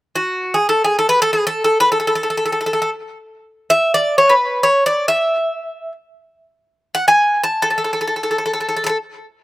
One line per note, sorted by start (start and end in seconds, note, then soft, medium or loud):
0.15 0.56 F#4 medium
0.54 0.68 G#4 medium
0.69 0.84 A4 medium
0.84 0.97 G#4 medium
0.99 1.09 A4 medium
1.09 1.21 B4 medium
1.22 1.33 A4 medium
1.33 1.46 G#4 medium
1.47 1.63 A4 medium
1.64 1.79 A4 medium
1.80 1.91 B4 medium
1.92 1.99 A4 medium
2.00 2.06 A4 soft
2.07 2.14 A4 medium
2.15 2.22 A4 soft
2.23 2.29 A4 soft
2.30 2.36 A4 soft
2.37 2.44 A4 soft
2.45 2.51 A4 soft
2.52 2.60 A4 soft
2.61 2.65 A4 soft
2.66 2.72 A4 soft
2.73 2.81 A4 soft
2.82 2.89 A4 soft
3.70 3.94 E5 medium
3.94 4.18 D5 medium
4.18 4.33 C#5 medium
4.29 4.67 B4 medium
4.63 4.86 C#5 medium
4.86 5.08 D5 medium
5.08 5.92 E5 medium
6.95 7.07 F#5 medium
7.08 7.43 G#5 medium
7.44 7.62 A5 medium
7.62 7.69 A4 medium
7.70 7.77 A4 soft
7.78 7.83 A4 soft
7.84 7.91 A4 soft
7.93 7.99 A4 soft
8.01 8.06 A4 soft
8.08 8.14 A4 soft
8.16 8.22 A4 soft
8.23 8.30 A4 soft
8.31 8.37 A4 soft
8.38 8.44 A4 soft
8.46 8.52 A4 soft
8.54 8.59 A4 soft
8.61 8.67 A4 soft
8.69 8.75 A4 soft
8.77 8.83 A4 soft
8.84 8.86 A4 soft
8.84 8.89 A4 medium
8.89 8.97 A4 soft